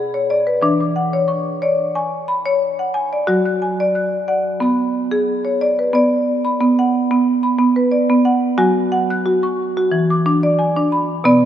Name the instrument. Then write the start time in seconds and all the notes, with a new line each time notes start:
marimba
Already playing: B2 G#4 F#5
0.14 C#5
0.30 D5
0.47 B4
0.62 E3 D4
0.81 D6
0.96 F#5
1.13 C#5
1.28 C#6
1.62 C#5 D5
1.95 G#5 C#6
2.28 B5
2.46 C#5
2.79 F#5
2.94 G#5
3.13 D5
3.27 F#3 F#4
3.45 F#6
3.62 G#5
3.80 D5
3.95 F#6
4.28 D5 F#5
4.60 B3 B5
5.11 G#4
5.45 C#5
5.61 D5
5.79 B4
5.93 B3 D5
6.45 B5
6.61 B3
6.79 F#5
7.11 B3
7.43 B5
7.58 B3
7.76 B4
7.92 D5
8.10 B3
8.25 F#5
8.58 F#3 F#4 G#5
8.92 F#5
9.10 F#6
9.26 F#4
9.43 C#6
9.77 F#4
9.91 E3
10.10 D6
10.26 D4
10.43 D5
10.59 G#5
10.76 D4
10.92 B5
11.24 B2 B3 D5